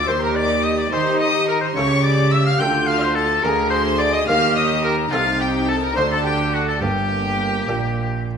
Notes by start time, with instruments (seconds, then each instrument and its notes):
0.07 double bass section D#2, cello section D#3, harpsichord D#3, viola section G4, violin section C5 C6, oboe C5
0.21 violin section A#4 A#5, oboe A#4
0.35 oboe D5, violin section D5 D6
0.63 violin section D#5 D#6, oboe D#5
0.78 violin section D5 D6, oboe D5
0.92 double bass section D#3, cello section D#4, harpsichord D#4 G4, viola section G4, violin section C5 C6, oboe C5
1.19 oboe D#5, violin section D#5 D#6
1.48 violin section A#4 A#5, oboe A#4
1.61 oboe C5, violin section C5 C6
1.75 double bass section C#2, cello section C#3, harpsichord C#3 E4 A4, viola section G4, oboe C#5, violin section C#5 C#6
2.03 oboe D5, violin section D5 D6
2.32 oboe E5, violin section E5 E6
2.45 oboe F5, violin section F5 F6
2.59 double bass section D2, cello section D3, harpsichord D3 F4 A4, viola section F4, oboe G5, violin section G5 G6
2.87 oboe F5, violin section F5 F6
3.02 violin section C5 C6, oboe C5
3.15 oboe A4, violin section A4 A5
3.43 double bass section D2, cello section D3, harpsichord D3 A#3 F4 G#4, viola section G#4, oboe A#4, violin section A#4 A#5
3.70 oboe C5, violin section C5 C6
3.99 oboe D5, violin section D5 D6
4.13 oboe D#5, violin section D#5 D#6
4.27 double bass section D#2, cello section D#3, harpsichord D#3 A#3 D#4 G4, viola section G4, oboe F5, violin section F5 F6
4.56 oboe D#5, violin section D#5 D#6
4.84 violin section A#4 A#5, oboe A#4
5.11 double bass section C2, cello section C3, harpsichord C3 A3 D#4 A4, viola section D#4, violin section F4 F5, oboe F4
5.39 violin section G4 G5, oboe G4
5.68 violin section A4 A5, oboe A4
5.82 violin section A#4 A#5, oboe A#4
5.96 double bass section D2, cello section D3, harpsichord D3 A3 D4 F#4, viola section D4, violin section C5 C6, oboe C5
6.11 violin section A4 A5, oboe A4
6.24 violin section G4 G5, oboe G4
6.52 violin section F#4 F#5, oboe F#4
6.66 violin section A4 A5, oboe A4
6.80 double bass section G1, cello section G2, harpsichord G2, viola section A#3, violin section G4 G5, oboe G4
7.68 double bass section A#1, cello section A#2, harpsichord A#2 A#3 D4 G4